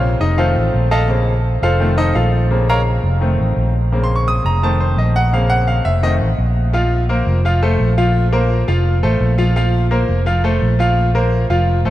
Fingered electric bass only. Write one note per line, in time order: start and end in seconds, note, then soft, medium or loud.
0.00 0.15 A#1 medium
0.21 0.54 F1 medium
0.56 0.73 A1 medium
0.74 1.56 A#1 medium
1.62 2.11 F1 loud
2.15 2.98 A#1 medium
3.03 3.36 F1 medium
3.40 3.56 A1 medium
3.57 4.39 A#1 medium
4.44 4.94 F1 loud
4.97 5.80 A#1 medium
5.86 6.18 F1 medium
6.21 6.37 A1 medium
6.38 7.21 A#1 medium
7.27 7.76 F1 loud
7.80 8.62 A#1 medium
8.68 9.01 F1 loud
9.03 9.20 A1 medium
9.21 10.03 A#1 medium
10.09 10.58 F1 loud
10.62 11.44 A#1 medium
11.50 11.83 F1 medium
11.85 11.90 A1 medium